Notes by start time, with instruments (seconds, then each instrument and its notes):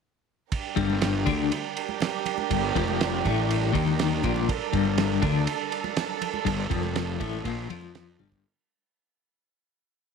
0.51 string section G3 D4 G4 A#4, kick, ride
0.76 fingered electric bass G1, clean electric guitar G2, kick, ride
0.90 high conga
1.02 snare, ride
1.26 fingered electric bass D2, clean electric guitar D3, kick, ride, low conga
1.52 ride
1.77 ride
1.89 high conga
2.00 snare, ride, high conga
2.26 ride, low conga
2.38 high conga
2.50 fingered electric bass G1, clean electric guitar G2, kick, ride
2.75 fingered electric bass F1, clean electric guitar F2, kick, ride
2.88 high conga
3.01 snare, ride
3.25 fingered electric bass A1, clean electric guitar A2, kick, ride, low conga
3.51 ride
3.73 fingered electric bass D#2, clean electric guitar D#3, kick, ride
3.87 high conga
3.99 snare, ride, high conga
4.23 fingered electric bass A#1, clean electric guitar A#2, kick, ride, low conga
4.36 high conga
4.48 string section A4, kick, ride
4.73 fingered electric bass G1, clean electric guitar G2, kick, ride
4.85 high conga
4.98 snare, ride
5.22 fingered electric bass D2, clean electric guitar D3, kick, ride, low conga
5.47 ride
5.72 ride
5.84 high conga
5.96 snare, ride, high conga
6.21 ride, low conga
6.34 high conga
6.45 fingered electric bass G1, clean electric guitar G2, kick, ride
6.70 fingered electric bass F1, clean electric guitar F2, kick, ride
6.83 high conga
6.96 snare, ride
7.20 fingered electric bass A1, clean electric guitar A2, kick, ride, low conga
7.33 high conga
7.44 fingered electric bass A#1, clean electric guitar A#2, kick, ride
7.69 fingered electric bass F2, clean electric guitar F3, ride, low conga
7.81 high conga
7.95 snare, ride
8.19 fingered electric bass G1, clean electric guitar G2, high tom, low conga
8.32 kick, high conga